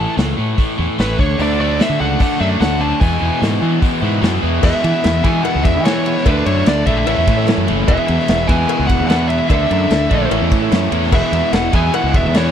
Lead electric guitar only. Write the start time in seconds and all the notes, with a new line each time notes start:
Already playing: A5
1.01 B4
1.20 C#5
1.42 D5
1.61 D5
1.82 E5
2.01 F#5
2.22 F#5
2.41 E5
2.61 F#5
2.81 A5
3.01 G#5
4.64 E5
5.24 G#5
5.44 F#5
5.64 E5
5.85 C#5
6.27 B4
6.46 C#5
6.68 D5
6.87 E5
7.88 E5
8.48 G#5
8.87 F#5
9.08 F#5
9.28 E5
9.49 E5
11.15 E5
11.53 F#5
11.75 G#5
11.95 F#5
12.16 E5
12.37 C#5